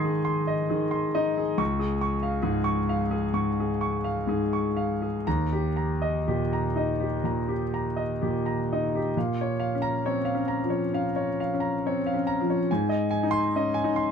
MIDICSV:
0, 0, Header, 1, 2, 480
1, 0, Start_track
1, 0, Tempo, 865801
1, 886, Time_signature, 4, 2, 24, 8
1, 1361, Tempo, 903614
1, 2321, Tempo, 1000000
1, 3281, Tempo, 963082
1, 4721, Tempo, 888889
1, 6161, Tempo, 865801
1, 7434, End_track
2, 0, Start_track
2, 0, Title_t, "Grand piano"
2, 0, Program_c, 0, 0
2, 0, Control_c, 0, 64, 127
2, 0, Note_on_c, 0, 44, 53
2, 0, Note_on_c, 0, 51, 48
2, 0, Note_on_c, 0, 63, 44
2, 0, Note_on_c, 0, 68, 37
2, 0, Note_on_c, 0, 75, 51
2, 0, Note_on_c, 0, 84, 51
2, 0, Note_on_c, 0, 87, 37
2, 0, Note_on_c, 0, 92, 31
2, 0, Note_on_c, 0, 96, 36
2, 24, Note_off_c, 0, 68, 0
2, 24, Note_on_c, 0, 68, 46
2, 104, Note_off_c, 0, 84, 0
2, 137, Note_on_c, 0, 84, 54
2, 224, Note_off_c, 0, 68, 0
2, 262, Note_off_c, 0, 75, 0
2, 262, Note_on_c, 0, 75, 49
2, 296, Note_off_c, 0, 51, 0
2, 342, Note_off_c, 0, 84, 0
2, 386, Note_on_c, 0, 68, 44
2, 390, Note_on_c, 0, 51, 47
2, 466, Note_off_c, 0, 75, 0
2, 505, Note_on_c, 0, 84, 48
2, 589, Note_off_c, 0, 68, 0
2, 635, Note_on_c, 0, 75, 58
2, 637, Note_off_c, 0, 63, 0
2, 637, Note_on_c, 0, 63, 53
2, 709, Note_off_c, 0, 84, 0
2, 762, Note_on_c, 0, 68, 47
2, 784, Note_off_c, 0, 51, 0
2, 833, Note_off_c, 0, 75, 0
2, 856, Note_off_c, 0, 87, 0
2, 862, Note_off_c, 0, 92, 0
2, 872, Note_off_c, 0, 96, 0
2, 873, Note_on_c, 0, 37, 59
2, 877, Note_on_c, 0, 85, 63
2, 882, Note_off_c, 0, 63, 0
2, 884, Note_off_c, 0, 68, 0
2, 895, Control_c, 0, 64, 0
2, 901, Note_off_c, 0, 44, 0
2, 992, Control_c, 0, 64, 127
2, 994, Note_on_c, 0, 68, 50
2, 1071, Note_off_c, 0, 85, 0
2, 1116, Note_on_c, 0, 85, 53
2, 1189, Note_off_c, 0, 68, 0
2, 1235, Note_on_c, 0, 77, 53
2, 1310, Note_off_c, 0, 85, 0
2, 1344, Note_on_c, 0, 68, 57
2, 1347, Note_on_c, 0, 44, 53
2, 1427, Note_off_c, 0, 77, 0
2, 1460, Note_on_c, 0, 85, 59
2, 1539, Note_off_c, 0, 68, 0
2, 1593, Note_on_c, 0, 77, 57
2, 1657, Note_off_c, 0, 85, 0
2, 1708, Note_on_c, 0, 68, 48
2, 1730, Note_off_c, 0, 44, 0
2, 1784, Note_off_c, 0, 77, 0
2, 1805, Note_off_c, 0, 37, 0
2, 1827, Note_on_c, 0, 44, 43
2, 1831, Note_on_c, 0, 85, 54
2, 1902, Note_off_c, 0, 68, 0
2, 1968, Note_on_c, 0, 68, 44
2, 2025, Note_off_c, 0, 85, 0
2, 2081, Note_on_c, 0, 85, 49
2, 2155, Note_off_c, 0, 68, 0
2, 2205, Note_on_c, 0, 77, 51
2, 2219, Note_off_c, 0, 44, 0
2, 2275, Note_off_c, 0, 85, 0
2, 2325, Note_on_c, 0, 44, 42
2, 2332, Note_on_c, 0, 68, 47
2, 2394, Note_off_c, 0, 77, 0
2, 2450, Note_on_c, 0, 85, 46
2, 2512, Note_off_c, 0, 68, 0
2, 2563, Note_on_c, 0, 77, 50
2, 2633, Note_off_c, 0, 85, 0
2, 2684, Note_on_c, 0, 68, 41
2, 2701, Note_off_c, 0, 44, 0
2, 2752, Note_off_c, 0, 77, 0
2, 2802, Note_off_c, 0, 68, 0
2, 2805, Note_on_c, 0, 82, 59
2, 2807, Note_on_c, 0, 39, 47
2, 2808, Control_c, 0, 64, 0
2, 2889, Control_c, 0, 64, 127
2, 2927, Note_on_c, 0, 67, 43
2, 2997, Note_off_c, 0, 82, 0
2, 3042, Note_on_c, 0, 82, 43
2, 3118, Note_off_c, 0, 67, 0
2, 3163, Note_on_c, 0, 75, 49
2, 3235, Note_off_c, 0, 82, 0
2, 3287, Note_on_c, 0, 67, 39
2, 3292, Note_on_c, 0, 46, 39
2, 3356, Note_off_c, 0, 75, 0
2, 3414, Note_on_c, 0, 82, 48
2, 3481, Note_off_c, 0, 67, 0
2, 3528, Note_on_c, 0, 63, 40
2, 3533, Note_on_c, 0, 75, 38
2, 3603, Note_off_c, 0, 82, 0
2, 3649, Note_on_c, 0, 67, 38
2, 3675, Note_off_c, 0, 46, 0
2, 3722, Note_off_c, 0, 75, 0
2, 3752, Note_off_c, 0, 39, 0
2, 3767, Note_on_c, 0, 46, 36
2, 3774, Note_on_c, 0, 82, 42
2, 3840, Note_off_c, 0, 67, 0
2, 3889, Note_on_c, 0, 67, 40
2, 3911, Note_off_c, 0, 63, 0
2, 3962, Note_off_c, 0, 82, 0
2, 4017, Note_on_c, 0, 82, 43
2, 4080, Note_off_c, 0, 67, 0
2, 4130, Note_on_c, 0, 75, 42
2, 4151, Note_off_c, 0, 46, 0
2, 4203, Note_off_c, 0, 82, 0
2, 4254, Note_on_c, 0, 67, 38
2, 4259, Note_on_c, 0, 46, 42
2, 4319, Note_off_c, 0, 75, 0
2, 4376, Note_on_c, 0, 82, 43
2, 4442, Note_off_c, 0, 67, 0
2, 4508, Note_on_c, 0, 63, 42
2, 4508, Note_on_c, 0, 75, 42
2, 4564, Note_off_c, 0, 82, 0
2, 4622, Note_on_c, 0, 67, 38
2, 4636, Note_off_c, 0, 46, 0
2, 4686, Note_off_c, 0, 75, 0
2, 4729, Note_off_c, 0, 67, 0
2, 4730, Control_c, 0, 64, 0
2, 4731, Note_on_c, 0, 46, 51
2, 4732, Note_off_c, 0, 63, 0
2, 4737, Note_on_c, 0, 77, 45
2, 4808, Control_c, 0, 64, 127
2, 4862, Note_on_c, 0, 73, 52
2, 4922, Note_off_c, 0, 77, 0
2, 4961, Note_on_c, 0, 77, 53
2, 5042, Note_off_c, 0, 73, 0
2, 5044, Note_on_c, 0, 61, 40
2, 5082, Note_on_c, 0, 82, 64
2, 5151, Note_off_c, 0, 77, 0
2, 5208, Note_on_c, 0, 60, 39
2, 5211, Note_on_c, 0, 73, 55
2, 5269, Note_off_c, 0, 82, 0
2, 5294, Note_off_c, 0, 61, 0
2, 5314, Note_on_c, 0, 77, 52
2, 5361, Note_off_c, 0, 60, 0
2, 5367, Note_on_c, 0, 61, 44
2, 5394, Note_off_c, 0, 73, 0
2, 5438, Note_on_c, 0, 82, 49
2, 5507, Note_off_c, 0, 77, 0
2, 5522, Note_on_c, 0, 53, 41
2, 5558, Note_on_c, 0, 73, 41
2, 5618, Note_off_c, 0, 61, 0
2, 5629, Note_off_c, 0, 82, 0
2, 5660, Note_off_c, 0, 46, 0
2, 5683, Note_on_c, 0, 61, 49
2, 5689, Note_on_c, 0, 77, 54
2, 5750, Note_off_c, 0, 73, 0
2, 5777, Note_off_c, 0, 53, 0
2, 5806, Note_on_c, 0, 73, 47
2, 5877, Note_off_c, 0, 77, 0
2, 5936, Note_on_c, 0, 77, 54
2, 5938, Note_off_c, 0, 61, 0
2, 5996, Note_off_c, 0, 73, 0
2, 6011, Note_on_c, 0, 61, 45
2, 6044, Note_on_c, 0, 82, 54
2, 6122, Note_off_c, 0, 77, 0
2, 6184, Note_on_c, 0, 60, 44
2, 6188, Note_on_c, 0, 73, 53
2, 6238, Note_off_c, 0, 82, 0
2, 6266, Note_off_c, 0, 61, 0
2, 6298, Note_on_c, 0, 77, 56
2, 6337, Note_off_c, 0, 60, 0
2, 6339, Note_on_c, 0, 61, 53
2, 6371, Note_off_c, 0, 73, 0
2, 6411, Note_on_c, 0, 82, 61
2, 6486, Note_off_c, 0, 77, 0
2, 6486, Note_on_c, 0, 53, 50
2, 6539, Note_on_c, 0, 73, 46
2, 6589, Note_off_c, 0, 61, 0
2, 6601, Note_off_c, 0, 82, 0
2, 6645, Note_off_c, 0, 53, 0
2, 6652, Note_off_c, 0, 73, 0
2, 6655, Note_on_c, 0, 80, 54
2, 6656, Control_c, 0, 64, 0
2, 6660, Note_on_c, 0, 44, 62
2, 6755, Control_c, 0, 64, 127
2, 6757, Note_on_c, 0, 75, 56
2, 6838, Note_off_c, 0, 80, 0
2, 6875, Note_on_c, 0, 80, 60
2, 6945, Note_on_c, 0, 63, 49
2, 6948, Note_off_c, 0, 75, 0
2, 6987, Note_on_c, 0, 84, 82
2, 7068, Note_off_c, 0, 80, 0
2, 7123, Note_on_c, 0, 61, 46
2, 7128, Note_on_c, 0, 75, 57
2, 7186, Note_off_c, 0, 84, 0
2, 7209, Note_off_c, 0, 63, 0
2, 7228, Note_on_c, 0, 80, 59
2, 7282, Note_off_c, 0, 61, 0
2, 7282, Note_on_c, 0, 63, 56
2, 7317, Note_off_c, 0, 75, 0
2, 7349, Note_on_c, 0, 84, 61
2, 7428, Note_off_c, 0, 80, 0
2, 7434, Note_off_c, 0, 44, 0
2, 7434, Note_off_c, 0, 63, 0
2, 7434, Note_off_c, 0, 84, 0
2, 7434, End_track
0, 0, End_of_file